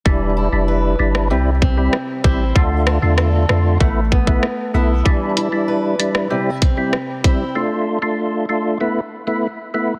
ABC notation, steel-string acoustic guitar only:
X:1
M:4/4
L:1/8
Q:1/4=96
K:Am
V:1 name="Steel-string acoustic guitar"
E, E B2 C, C2 [CEc] | D, D A2 A, B,2 [B,EA] | E, E B2 C, C2 [CEc] | z8 |]